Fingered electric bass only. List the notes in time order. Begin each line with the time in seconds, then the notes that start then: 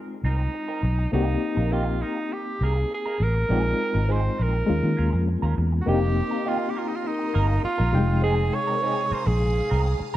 0.24 C2
0.83 B1
1.13 C2
1.57 A#1
2.61 C2
3.20 A1
3.50 A#1
3.95 G#1
4.39 A#1
4.69 D#2
4.83 D#3
4.99 D#2
5.13 F2
5.43 D#2
5.58 E2
5.87 F1
7.36 G1
7.64 muted fingered electric bass stroke
7.80 A#1
7.94 F1
9.11 muted fingered electric bass stroke
9.27 A#1
9.71 C2
10.00 muted fingered electric bass stroke